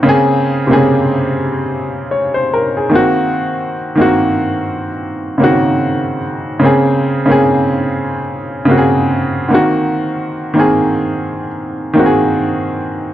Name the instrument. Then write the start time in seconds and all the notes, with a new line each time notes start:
upright piano
0.03 C#3 A#3 C4
0.09 G#4
0.67 C3 A#3
0.71 C#3 C4 G#4
2.11 C#5
2.34 C5
2.54 A#4
2.77 G#4
2.90 D#3 A#3
2.94 C4 F#4
3.95 D#3 A#3
3.99 C4 F#4
5.38 C#3 A#3 C4
5.44 D#3 F#4
6.59 C#3 A#3
6.63 C4 G#4
7.26 C#3 A#3 C4
7.31 G#4
8.65 C#3 A#3 C4
8.71 F#4
8.78 G#4
9.49 D3 A#3 C4
9.54 D#3 F#4
10.54 D#3 A#3 C4
10.60 G#4
11.94 D#3 A#3 C4
11.99 F#4
12.06 G#4